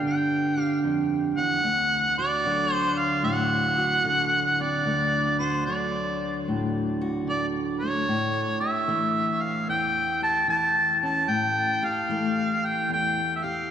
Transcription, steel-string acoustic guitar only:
0.00 0.83 G2 medium
0.00 0.03 D3 medium
0.00 1.60 D3 medium
0.00 1.61 B3 medium
0.00 1.40 D4 medium
0.00 0.56 G4 medium
0.57 1.61 G4 medium
0.84 1.37 F2 medium
1.37 1.63 E2 medium
1.64 4.84 D2 medium
2.19 3.77 F#4 medium
2.45 4.03 D3 medium
2.45 5.67 F#3 medium
3.23 4.04 A2 medium
3.78 4.82 F#4 medium
4.04 5.66 D3 medium
4.60 4.83 C4 medium
4.86 8.07 D2 medium
5.40 7.00 F#4 medium
5.67 7.26 D3 medium
5.67 8.08 F#3 medium
6.48 7.28 A2 medium
7.01 8.05 F#4 medium
7.27 8.07 D3 medium
7.82 8.87 A3 medium
8.08 9.69 A2 medium
8.61 10.22 G4 medium
8.88 10.47 E3 medium
8.88 11.26 A3 medium
9.68 11.26 E2 medium
10.22 11.31 G4 medium
10.48 11.26 E3 medium
11.03 11.26 C#4 medium
11.28 12.90 A2 medium
11.83 13.43 G4 medium
12.09 13.70 E3 medium
12.09 13.71 A3 medium
12.89 13.71 E2 medium
13.44 13.71 G4 medium

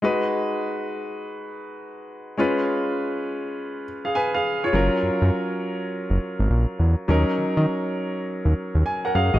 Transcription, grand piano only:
0.02 2.34 G#3 medium
0.02 2.34 D#4 medium
0.02 2.35 F#4 medium
0.02 2.35 B4 medium
2.37 4.69 G#3 medium
2.37 4.70 C#4 medium
2.37 3.83 F4 medium
2.37 3.83 B4 medium
4.05 4.15 G#4 soft
4.05 4.15 F5 medium
4.15 4.33 B4 medium
4.15 4.33 G#5 medium
4.34 4.62 G#4 medium
4.34 4.62 F5 medium
4.64 4.73 F4 medium
4.64 4.91 C#5 medium
4.73 7.05 F#3 medium
4.73 7.05 C#4 medium
4.73 7.05 F4 medium
4.73 7.06 A#4 medium
7.08 9.39 F#3 medium
7.08 9.39 C#4 medium
7.08 9.39 D#4 medium
7.08 8.83 A#4 medium
8.86 9.03 G#5 medium
9.05 9.15 A#4 medium
9.05 9.15 F#5 medium
9.15 9.33 G#4 medium
9.15 9.33 F5 medium
9.34 9.39 F#4 medium
9.34 9.39 D#5 medium

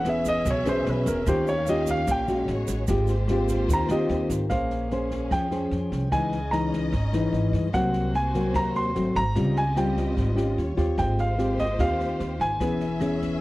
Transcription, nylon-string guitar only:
0.00 0.44 E3 medium
0.07 0.47 B3 medium
0.07 0.47 C#4 medium
0.07 0.47 G#4 medium
0.46 1.25 B2 medium
0.66 1.24 B3 medium
0.66 1.24 C#4 medium
0.66 1.24 G#4 medium
1.27 2.06 D#3 medium
1.27 1.53 C#4 medium
1.27 1.54 F4 medium
1.27 1.54 G4 medium
1.68 2.25 C#4 medium
1.68 2.26 F4 medium
1.68 2.26 G4 medium
2.09 2.47 A#2 medium
2.28 2.85 G#3 medium
2.28 2.85 C#4 medium
2.28 2.86 F#4 medium
2.88 3.67 G#3 medium
2.88 3.14 C4 medium
2.88 3.15 F4 medium
2.88 3.15 G4 medium
3.30 3.87 C4 medium
3.30 3.87 F4 medium
3.30 3.88 G4 medium
3.70 4.49 D#3 medium
3.91 4.48 C4 medium
3.91 4.48 F4 medium
3.91 4.48 G4 medium
4.50 5.30 A#3 soft
4.50 4.88 C#4 soft
4.50 4.88 G#4 soft
4.50 4.88 C5 medium
4.92 5.49 C#4 medium
4.92 5.49 G#4 medium
4.92 5.49 C5 medium
5.32 6.10 F3 soft
5.51 6.09 C#4 medium
5.51 6.09 G#4 medium
5.51 6.09 C5 medium
6.13 6.91 C#3 medium
6.13 6.39 E3 soft
6.13 6.39 G#3 medium
6.13 6.39 D#4 medium
6.53 6.93 E3 medium
6.53 6.93 G#3 medium
6.53 6.93 D#4 medium
6.94 7.72 G#2 soft
7.14 7.71 E3 medium
7.14 7.72 G#3 medium
7.14 7.72 D#4 medium
7.73 8.53 C3 medium
7.73 8.14 F#3 medium
7.73 8.14 A#3 medium
7.73 8.14 C4 medium
8.35 8.93 F#3 medium
8.35 8.93 A#3 medium
8.35 8.93 C4 medium
8.54 8.93 C3 soft
8.96 9.22 F#3 soft
8.96 9.22 A3 soft
8.96 9.22 C4 medium
9.36 10.15 C#3 medium
9.36 9.62 G3 medium
9.36 9.62 C4 soft
9.36 9.63 F4 medium
9.77 10.34 G3 medium
9.77 10.34 C4 medium
9.77 10.35 F4 medium
10.17 10.56 G#2 medium
10.36 10.74 C#4 soft
10.36 10.74 F4 medium
10.36 10.74 G4 medium
10.77 11.37 C4 medium
10.77 11.38 F4 medium
10.77 11.38 G4 medium
10.98 11.77 G#3 soft
11.38 11.65 C4 medium
11.38 11.65 F4 medium
11.38 11.65 G4 medium
11.79 12.58 D#3 medium
11.79 12.34 C4 medium
11.79 12.34 F4 soft
11.79 12.34 G4 medium
12.61 13.40 E3 soft
12.61 12.87 B3 medium
12.61 12.87 C#4 soft
12.61 12.87 G#4 soft
13.01 13.41 B3 medium
13.01 13.41 C#4 medium
13.01 13.41 G#4 medium

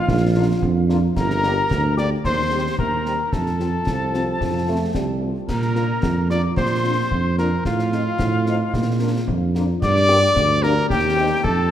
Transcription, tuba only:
0.09 0.54 A#1 medium
0.63 1.08 F2 medium
1.17 1.62 G1 medium
1.71 2.16 D2 medium
2.25 2.70 D#2 medium
2.79 3.24 D#2 medium
3.33 3.78 F2 medium
3.87 4.32 C2 medium
4.41 4.86 F2 medium
4.95 5.35 C2 soft
5.49 5.94 A#2 medium
6.03 6.48 F2 medium
6.57 7.02 A#2 medium
7.11 7.56 F2 medium
7.65 8.10 A2 medium
8.19 8.65 A2 medium
8.74 9.19 A#2 medium
9.28 9.73 F2 medium
9.82 10.27 G2 medium
10.36 10.81 D2 medium
10.90 11.35 D#2 medium
11.44 11.71 F2 medium

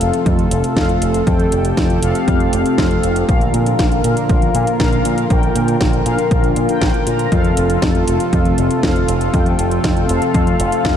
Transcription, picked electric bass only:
0.01 0.11 F1 medium
0.26 0.45 F2 medium
0.51 0.61 F1 medium
0.77 0.96 F2 medium
1.02 1.21 F1 medium
1.27 1.46 F2 medium
1.52 1.72 F1 medium
1.77 1.97 F2 medium
2.03 2.12 F1 medium
2.28 2.47 F2 medium
2.53 2.63 F1 medium
2.78 2.98 F2 loud
3.03 3.23 F1 medium
3.29 3.48 A#1 medium
3.54 3.73 A#2 medium
3.79 3.98 A#1 medium
4.04 4.14 A#2 medium
4.30 4.49 A#1 medium
4.55 4.64 A#2 loud
4.80 4.99 A#1 loud
5.05 5.24 A#2 medium
5.30 5.50 A#1 medium
5.56 5.75 A#2 medium
5.81 6.00 A#1 medium
6.06 6.16 A#2 medium
6.31 6.51 A#1 medium
6.56 6.66 A#2 loud
6.82 6.91 A#1 medium
7.07 7.26 A#2 medium
7.32 7.51 F2 medium
7.57 7.77 F1 medium
7.82 8.02 F2 medium
8.08 8.17 F1 medium
8.33 8.52 F2 medium
8.58 8.68 F1 medium
8.83 9.03 F2 loud
9.08 9.28 F1 medium
9.34 9.53 F2 medium
9.59 9.78 F1 medium
9.84 10.03 F2 medium
10.09 10.19 F1 medium
10.35 10.54 F2 medium
10.60 10.69 F1 loud
10.85 10.97 F2 loud

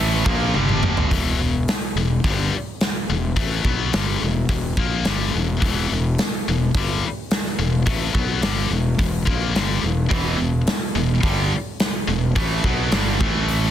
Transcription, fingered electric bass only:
0.00 0.22 A1 medium
0.27 0.53 A#1 loud
0.55 1.07 G1 medium
1.11 1.37 E1 medium
1.39 1.65 E1 medium
1.95 2.21 E1 medium
2.25 2.50 G1 medium
3.09 3.35 E1 medium
3.37 3.63 A1 medium
3.65 3.91 B1 medium
3.94 4.19 G1 medium
4.22 4.47 E1 medium
4.49 4.75 E1 medium
4.77 5.03 A#1 medium
5.06 5.32 G1 medium
5.35 5.61 E1 medium
5.62 5.88 E1 medium
5.92 6.17 E1 medium
6.48 6.73 E1 medium
6.75 7.01 G1 medium
7.59 7.85 E1 medium
8.15 8.41 B1 medium
8.42 8.69 G1 medium
8.70 8.97 E1 medium
9.00 9.25 E1 medium
9.27 9.53 A#1 medium
9.54 9.81 G1 medium
9.83 10.09 E1 medium
10.11 10.37 E1 medium
10.39 10.65 E1 medium
10.95 11.21 E1 medium
11.24 11.50 G1 medium
12.08 12.34 E1 medium
12.36 12.62 A1 medium
12.65 12.90 B1 medium
12.93 13.18 G1 medium
13.21 13.71 A1 loud

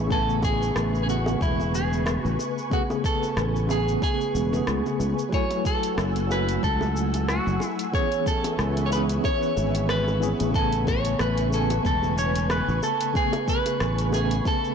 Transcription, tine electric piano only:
0.00 0.13 E3 medium
0.00 0.11 B3 medium
0.00 0.13 C#4 medium
0.00 0.12 G#4 medium
0.07 1.03 C#3 medium
0.07 1.04 A3 medium
0.11 1.05 B3 medium
0.11 1.07 G#5 loud
1.05 2.66 C#3 medium
1.05 2.68 A3 medium
1.09 2.69 B3 medium
1.09 2.70 G#4 medium
2.70 2.89 C#3 medium
2.70 2.89 A3 medium
2.70 2.90 B3 medium
2.70 2.90 G#4 medium
3.66 4.47 C#3 medium
3.66 4.48 A3 medium
3.70 4.50 B3 medium
3.70 4.51 G#4 medium
4.50 5.27 C#3 medium
4.50 5.29 A3 medium
4.54 5.30 B3 medium
4.54 5.31 G#4 medium
5.29 6.25 F#3 medium
5.29 6.26 A3 medium
5.33 6.27 E4 medium
5.33 6.28 G#5 medium
6.27 7.88 F#3 medium
6.27 7.89 A3 medium
6.31 7.90 E4 medium
6.31 7.91 G#5 medium
7.92 8.11 E3 medium
7.92 8.11 B3 medium
7.92 8.12 C#4 medium
7.92 8.12 G#4 medium
8.88 10.17 E3 medium
8.88 10.18 B3 medium
8.93 10.19 C#4 medium
8.93 10.20 G#4 medium
10.20 10.47 E3 medium
10.20 10.48 B3 medium
10.20 10.48 C#4 medium
10.20 10.49 G#4 medium
10.51 11.47 C#3 medium
10.51 11.48 A3 medium
10.55 11.49 B3 medium
10.55 11.50 G#5 loud
11.49 13.10 C#3 medium
11.49 13.11 A3 medium
11.53 13.12 B3 medium
11.53 13.13 G#5 medium
13.13 13.32 C#3 medium
13.13 13.33 A3 medium
13.13 13.33 B3 medium
13.13 13.34 G#4 medium
14.09 14.75 C#3 medium
14.09 14.75 A3 medium
14.14 14.75 B3 medium
14.14 14.75 G#5 medium

